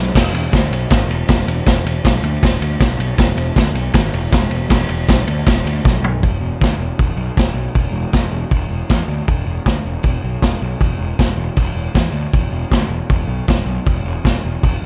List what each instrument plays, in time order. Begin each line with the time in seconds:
0.14 picked electric bass E1, kick, snare, splash, crash
0.32 picked electric bass E1, ride
0.53 picked electric bass D2, kick, snare, ride
0.70 picked electric bass B1, ride
0.90 picked electric bass G#1, kick, snare, ride
1.07 picked electric bass E1, ride
1.28 picked electric bass E1, kick, snare, ride
1.46 picked electric bass E1, ride
1.66 picked electric bass E1, kick, snare, ride
1.85 picked electric bass E1, ride
2.05 picked electric bass B1, kick, snare, ride
2.22 picked electric bass D2, ride
2.43 picked electric bass E1, kick, snare, ride
2.61 picked electric bass D2, ride
2.80 picked electric bass B1, kick, snare, ride
2.99 picked electric bass B1, ride
3.18 picked electric bass E1, kick, snare, ride
3.36 picked electric bass E1, ride
3.56 picked electric bass D2, kick, snare, ride
3.73 picked electric bass B1, ride
3.93 picked electric bass G#1, kick, snare, ride
4.13 picked electric bass E1, ride
4.32 picked electric bass E1, kick, snare, ride
4.50 picked electric bass E1, ride
4.70 picked electric bass E1, kick, snare, ride
4.89 picked electric bass E1, ride
5.08 picked electric bass B1, kick, snare, ride
5.27 picked electric bass D2, ride
5.46 picked electric bass E1, kick, snare, ride
5.65 picked electric bass D2, ride
5.84 picked electric bass B1, kick, snare
6.02 picked electric bass B1, floor tom
6.23 picked electric bass E1, kick, crash
6.40 picked electric bass E1
6.61 picked electric bass D2, kick, snare, crash
6.78 picked electric bass E1
6.99 picked electric bass E1, kick, crash
7.17 picked electric bass B1
7.37 picked electric bass E1, kick, snare, crash
7.54 picked electric bass B1
7.75 picked electric bass E1, kick, crash
7.92 picked electric bass E1
8.13 picked electric bass E1, kick, snare, crash
8.31 picked electric bass E1
8.51 picked electric bass E1, kick, crash
8.69 picked electric bass E1
8.89 picked electric bass E2, kick, snare, crash
9.08 picked electric bass D2
9.28 picked electric bass E1, kick, crash
9.46 picked electric bass E1
9.66 picked electric bass D2, kick, snare, crash
9.85 picked electric bass E1
10.03 picked electric bass E1, kick, crash
10.24 picked electric bass B1
10.42 picked electric bass E1, kick, snare, crash
10.62 picked electric bass B1
10.80 picked electric bass E1, kick, crash
10.99 picked electric bass E1
11.19 picked electric bass E1, kick, snare, crash
11.36 picked electric bass E1
11.57 picked electric bass E1, kick, crash
11.75 picked electric bass E1
11.94 picked electric bass E2, kick, snare, crash
12.12 picked electric bass D2
12.33 picked electric bass E1, kick, crash
12.51 picked electric bass E1
12.71 picked electric bass D2, kick, snare, crash
12.88 picked electric bass E1
13.10 picked electric bass E1, kick, crash
13.28 picked electric bass B1
13.48 picked electric bass E1, kick, snare, crash
13.66 picked electric bass B1
13.86 picked electric bass E1, kick, crash
14.05 picked electric bass E1
14.24 picked electric bass E1, kick, snare, crash
14.45 picked electric bass E1
14.63 picked electric bass E1, kick, crash
14.83 picked electric bass E1